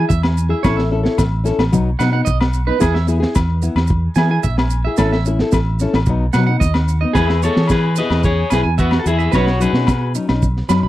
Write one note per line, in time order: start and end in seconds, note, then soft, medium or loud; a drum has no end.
0.00 0.12 E4 soft
0.00 0.11 G#4 medium
0.09 0.53 E2 medium
0.09 0.21 E5 medium
0.09 kick medium
0.09 maracas medium
0.23 snare medium
0.23 low agogo medium
0.37 maracas medium
0.49 0.64 E4 soft
0.49 0.63 G#4 medium
0.49 0.62 E5 medium
0.63 1.07 A1 medium
0.63 0.80 C#4 medium
0.63 0.81 E4 medium
0.63 0.81 A4 medium
0.63 0.75 C#5 medium
0.63 kick medium
0.63 snare medium
0.63 low agogo medium
0.63 maracas medium
0.77 0.89 E5 medium
0.77 snare medium
0.91 1.05 C#4 medium
0.91 1.04 E4 medium
0.91 1.02 A4 medium
1.03 1.21 E4 soft
1.03 1.20 A4 medium
1.03 snare medium
1.18 1.50 A1 medium
1.18 kick medium
1.18 snare medium
1.18 low agogo medium
1.18 maracas loud
1.44 1.61 C#4 medium
1.44 1.61 E4 medium
1.44 1.62 A4 medium
1.44 snare soft
1.44 maracas medium
1.59 1.69 A1 medium
1.59 snare medium
1.59 low agogo medium
1.72 1.94 B1 medium
1.72 1.89 F#3 medium
1.72 1.89 B3 medium
1.72 1.89 D#4 medium
1.72 kick medium
1.72 maracas medium
1.99 2.21 B2 medium
1.99 2.13 F#3 medium
1.99 2.13 B3 medium
1.99 2.11 D#4 medium
1.99 2.11 F#5 medium
1.99 snare medium
1.99 low agogo medium
1.99 maracas medium
2.12 2.30 B3 soft
2.12 2.29 D#4 medium
2.12 2.24 F#5 medium
2.25 2.70 B1 medium
2.25 2.38 D#5 medium
2.25 kick medium
2.25 maracas medium
2.41 snare medium
2.41 low agogo medium
2.53 maracas medium
2.67 2.77 B3 soft
2.67 2.79 D#4 medium
2.67 2.79 B4 medium
2.79 3.24 E2 medium
2.79 2.96 B3 medium
2.79 2.97 E4 medium
2.79 2.97 G#4 medium
2.79 2.93 G#4 medium
2.79 kick medium
2.79 snare medium
2.79 low agogo medium
2.79 maracas medium
2.94 3.06 E5 medium
2.94 snare medium
3.07 3.21 B3 medium
3.07 3.21 E4 medium
3.07 3.19 G#4 medium
3.07 maracas medium
3.20 3.38 E4 soft
3.20 3.37 G#4 medium
3.20 snare medium
3.35 3.68 E2 medium
3.35 kick medium
3.35 snare medium
3.35 low agogo medium
3.35 maracas medium
3.62 3.79 B3 medium
3.62 3.79 E4 medium
3.62 maracas medium
3.75 4.07 E2 medium
3.75 snare medium
3.75 low agogo medium
3.87 kick medium
3.87 maracas medium
4.15 4.38 E3 medium
4.15 4.30 B3 medium
4.15 4.31 E4 medium
4.15 4.29 G#4 medium
4.15 4.28 G#5 medium
4.15 snare medium
4.15 low agogo medium
4.15 maracas medium
4.31 4.47 E4 medium
4.31 4.46 G#4 medium
4.31 4.42 G#5 medium
4.43 4.87 A#1 medium
4.43 4.56 E5 medium
4.43 kick medium
4.43 maracas medium
4.58 snare medium
4.58 low agogo medium
4.70 maracas medium
4.85 4.98 E4 soft
4.85 4.99 G#4 medium
4.85 4.96 E5 medium
4.97 5.41 A1 medium
4.97 5.15 C#4 medium
4.97 5.15 E4 medium
4.97 5.10 A4 medium
4.97 5.16 A4 medium
4.97 kick medium
4.97 snare medium
4.97 low agogo medium
4.97 maracas medium
5.12 5.24 E5 medium
5.12 snare medium
5.25 5.39 C#4 medium
5.25 5.40 E4 medium
5.25 muted nylon-string guitar stroke medium
5.25 maracas medium
5.39 5.57 E4 soft
5.39 5.56 A4 medium
5.39 snare medium
5.52 5.85 A1 medium
5.52 kick medium
5.52 snare medium
5.52 low agogo medium
5.52 maracas medium
5.79 5.97 C#4 medium
5.79 5.97 E4 medium
5.79 5.97 A4 medium
5.79 snare soft
5.79 maracas medium
5.93 6.04 A1 medium
5.93 snare medium
5.93 low agogo medium
6.06 6.29 B1 medium
6.06 6.24 F#3 medium
6.06 6.24 B3 medium
6.06 kick medium
6.06 maracas medium
6.10 6.25 D#4 medium
6.33 6.56 B2 medium
6.33 6.48 F#3 medium
6.33 6.49 B3 medium
6.33 6.45 F#5 medium
6.33 snare medium
6.33 low agogo medium
6.33 maracas medium
6.38 6.47 D#4 medium
6.47 6.64 D#4 medium
6.47 6.59 F#5 medium
6.51 6.66 B3 soft
6.60 7.04 D#2 medium
6.60 6.73 D#5 medium
6.60 kick medium
6.60 maracas medium
6.74 snare medium
6.74 low agogo medium
6.88 maracas medium
7.01 7.16 B3 soft
7.01 7.15 D#4 medium
7.01 7.13 D#5 medium
7.13 7.48 E2 medium
7.13 7.33 B3 medium
7.13 7.27 G#4 medium
7.13 7.41 G#4 medium
7.13 7.42 G#4 medium
7.13 7.43 B4 medium
7.13 kick medium
7.13 snare medium
7.13 low agogo medium
7.13 maracas medium
7.17 7.33 E4 medium
7.17 7.33 G#4 medium
7.28 7.40 E5 medium
7.28 snare medium
7.43 7.56 B3 medium
7.43 7.57 E4 medium
7.43 7.56 G#4 medium
7.43 7.69 A4 medium
7.43 7.71 C#5 medium
7.43 maracas medium
7.56 8.00 E3 medium
7.56 7.74 E4 soft
7.56 7.73 G#4 soft
7.56 snare medium
7.68 7.96 G#4 medium
7.68 kick medium
7.68 snare medium
7.68 low agogo medium
7.68 maracas medium
7.72 7.96 B4 medium
7.96 8.11 B3 medium
7.96 8.12 E4 medium
7.96 8.22 B4 medium
7.96 8.24 B4 medium
7.96 8.23 D#5 medium
7.96 snare soft
7.96 maracas medium
8.00 8.10 G#4 medium
8.10 8.43 E2 medium
8.10 8.28 E4 soft
8.10 8.27 G#4 medium
8.10 snare medium
8.10 low agogo medium
8.23 8.50 G#4 medium
8.23 8.50 C#5 medium
8.23 kick medium
8.23 maracas medium
8.50 8.63 B1 medium
8.50 8.68 B3 medium
8.50 8.69 E4 medium
8.50 8.60 G#4 medium
8.50 8.69 G#4 medium
8.50 8.61 B4 medium
8.50 8.62 G#5 medium
8.50 snare medium
8.50 low agogo medium
8.50 maracas medium
8.55 8.66 G#4 medium
8.63 8.97 E2 medium
8.63 8.76 G#5 medium
8.78 8.98 B3 medium
8.78 8.99 B3 medium
8.78 8.98 F#4 medium
8.78 8.91 E5 medium
8.78 kick medium
8.78 maracas medium
8.91 snare medium
8.91 low agogo medium
8.99 9.07 F#4 soft
8.99 9.06 A4 medium
9.06 9.27 E2 medium
9.06 9.23 B3 medium
9.06 9.23 E4 medium
9.06 9.32 E4 medium
9.06 9.33 E4 medium
9.06 9.32 G#4 medium
9.06 9.24 G#4 medium
9.06 maracas medium
9.18 9.31 E5 medium
9.18 maracas soft
9.31 9.66 B1 loud
9.31 9.50 F#3 medium
9.31 9.50 C#4 medium
9.31 9.50 D#4 medium
9.31 9.59 F#4 medium
9.31 9.45 B4 medium
9.31 9.60 C#5 medium
9.31 kick medium
9.31 snare medium
9.31 low agogo medium
9.31 maracas medium
9.47 snare medium
9.60 9.74 F#3 medium
9.60 9.75 C#4 medium
9.60 9.73 D#4 medium
9.60 10.11 F#4 medium
9.60 10.12 G#4 medium
9.60 10.12 B4 medium
9.60 maracas medium
9.73 10.16 B2 medium
9.73 9.92 C#4 soft
9.73 9.91 D#4 medium
9.73 snare medium
9.87 kick medium
9.87 snare medium
9.87 low agogo medium
9.87 maracas medium
10.14 10.29 F#3 medium
10.14 10.29 C#4 medium
10.14 10.28 D#4 medium
10.14 maracas medium
10.29 10.61 B1 medium
10.29 10.46 C#4 soft
10.29 10.45 D#4 medium
10.29 snare medium
10.29 low agogo medium
10.42 kick medium
10.42 maracas medium
10.57 snare soft
10.68 10.80 F#2 medium
10.68 10.86 F#3 medium
10.68 10.86 C#4 medium
10.68 10.86 D#4 medium
10.68 10.81 B5 medium
10.68 snare medium
10.68 low agogo medium
10.68 maracas medium
10.83 10.88 B1 medium
10.83 10.88 B5 medium